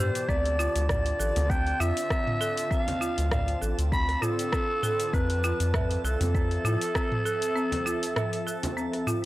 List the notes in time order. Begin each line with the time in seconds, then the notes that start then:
Already playing: B2 E3 G4 C5 D5 A5
0.00 G2 G4
0.15 open hi-hat, shaker
0.28 D2 D3 C4 D5, kick, shaker
0.45 F4, open hi-hat
0.59 F4, shaker
0.67 C4
0.75 D2, open hi-hat, shaker
0.89 D5, kick, cross-stick, mid tom, shaker
1.06 open hi-hat
1.19 A1 A4, shaker
1.36 D2, open hi-hat, frame drum, shaker
1.50 C4 G5, kick, shaker
1.67 open hi-hat
1.80 F2 F4 E5, shaker
1.97 open hi-hat, shaker
2.10 C4, kick, cross-stick, shaker
2.27 mid tom
2.41 A4, shaker
2.57 open hi-hat, shaker
2.71 C4 F5, kick, shaker
2.88 open hi-hat, frame drum
3.01 F4, shaker
3.18 D2, open hi-hat, shaker
3.31 D5 F5, kick, cross-stick, mid tom, shaker
3.48 open hi-hat
3.62 A1 A4, shaker
3.78 D2, open hi-hat, shaker
3.92 C4 B5, kick, shaker
4.09 cross-stick, open hi-hat
4.22 F4 A4, mid tom, shaker
4.39 open hi-hat, shaker
4.53 C4, kick, cross-stick, shaker
4.83 A4, mid tom, shaker
5.00 open hi-hat, shaker
5.13 F2 F3 C4 B4, kick, shaker
5.30 open hi-hat
5.44 F4 A4, shaker
5.60 F2, open hi-hat, shaker
5.67 E5
5.74 B4 E5, kick, cross-stick, mid tom, shaker
5.91 open hi-hat
6.04 C2 A4, shaker
6.21 F2, open hi-hat, frame drum, shaker
6.35 C4, kick, shaker
6.51 open hi-hat
6.64 A2 F4, shaker
6.81 open hi-hat, shaker
6.95 C4, kick, cross-stick, shaker
7.12 mid tom
7.25 A4, shaker
7.42 open hi-hat, shaker
7.56 C4, shaker
7.72 open hi-hat, frame drum
7.86 F4, shaker
8.03 open hi-hat, shaker
8.16 E5, cross-stick, mid tom, shaker
8.33 open hi-hat
8.47 A4, shaker
8.63 open hi-hat, frame drum, shaker
8.77 C4, shaker
8.93 cross-stick, open hi-hat
9.07 F4, mid tom, shaker